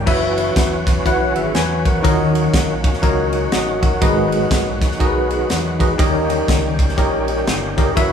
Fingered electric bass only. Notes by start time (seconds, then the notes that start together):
0.07 F#1
0.56 E1
1.06 B1
1.36 G#1
1.55 E2
2.05 D#2
2.53 A#1
3.03 C#2
3.52 A1
4.02 G#1
4.51 A#1
5.00 B1
5.50 E2
5.99 D#2
6.48 C#2
6.98 A#1
7.47 G1
7.97 F#1